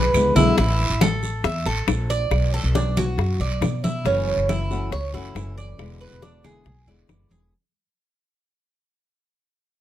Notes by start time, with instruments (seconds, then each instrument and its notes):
Already playing: upright bass B1, cuban tres G#4 B4
0.14 upright bass C#2, nylon-string guitar D3 G#3 B3 E4, cowbell, short guiro, claves
0.35 upright bass B1, nylon-string guitar D3 G#3 B3 E4, cuban tres E4, low conga, short guiro
0.57 upright bass A1, cuban tres E4, high bongo, high conga, long guiro
0.80 high conga
0.90 upright bass A1
1.01 cuban tres A4, high bongo, high conga, short guiro, claves
1.23 high bongo, high conga, short guiro
1.44 upright bass E2, cuban tres E5, high bongo, high conga, long guiro
1.66 upright bass A1, cuban tres A4, high bongo, high conga
1.88 upright bass A#1, high bongo, low bongo, high conga, short guiro, claves
2.10 cuban tres D5, high bongo, high conga, short guiro
2.31 upright bass B1, high bongo, high conga, long guiro, claves
2.54 cuban tres A4, high conga
2.64 upright bass B1
2.75 cuban tres D4, high bongo, high conga, short guiro
2.97 cuban tres F#4, high bongo, high conga, low conga, short guiro, claves
3.18 upright bass F#2, high bongo, high conga, long guiro
3.40 upright bass B1, cuban tres D5, high conga
3.61 upright bass B2, high bongo, low bongo, high conga, short guiro, claves
3.84 cuban tres E4, high bongo, high conga, short guiro
4.05 upright bass F#1, nylon-string guitar C#3 E3 A3 C#4 F#4, cuban tres C#4, high bongo, high conga, long guiro
4.28 high conga
4.37 upright bass F#1
4.49 cuban tres E4, high bongo, high conga, short guiro, claves
4.71 nylon-string guitar E3 A3 C#4 F#4, high bongo, high conga, short guiro
4.92 upright bass C#2, cuban tres C#5, muted nylon-string guitar stroke, high bongo, high conga, long guiro
5.13 upright bass F#1, nylon-string guitar E3 A3 C#4 F#4, cuban tres E4, high bongo, high conga
5.35 upright bass F#1, nylon-string guitar E3 A3 C#4 F#4, high bongo, low bongo, high conga, short guiro, claves
5.58 cuban tres D5, high bongo, high conga, short guiro
5.79 upright bass E1, nylon-string guitar B2 D3 G#3 B3 E4, high bongo, high conga, long guiro, claves
6.01 cuban tres B4, high conga
6.11 upright bass E1
6.22 cuban tres D4, high bongo, high conga, short guiro
6.44 nylon-string guitar D3 G#3 B3 E4, cuban tres G#4, high bongo, high conga, low conga, short guiro, claves
6.65 upright bass B1, muted nylon-string guitar stroke, high bongo, high conga, low conga, long guiro
6.87 upright bass E1, nylon-string guitar D3 G#3 B3 E4, cuban tres D5, high conga
7.09 upright bass F#1, nylon-string guitar D3 G#3 B3 E4, high bongo, low bongo, high conga, short guiro, claves
7.30 upright bass E1, cuban tres G#4, high bongo, high conga, short guiro